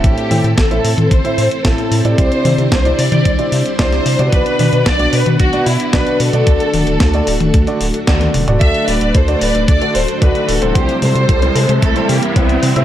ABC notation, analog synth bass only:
X:1
M:4/4
L:1/16
Q:1/4=112
K:Dmix
V:1 name="Analog synth bass" clef=bass
A,,, z A,, A,, A,,,2 A,, A,, A,,, z A,, z A,,, z A,, A,, | C,, z C, C, C,,2 C, C, C,, z C, z C,,2 C, C, | B,,, z B,, B,, B,,,2 B,, B,, B,,, z B,, z B,,, z B,, B,, | D,, z D,,, D,,, D,,2 D,,, D,,, D,, z D,,, z D,,2 D,,, D,,, |
D,, z D,,, D,,, D,,2 D,,, D,,, D,, z D,,, z D,, z D,,, D,,, | C,, z C, C, C,,2 C, C, C,, z C, z C,,2 C, C, |]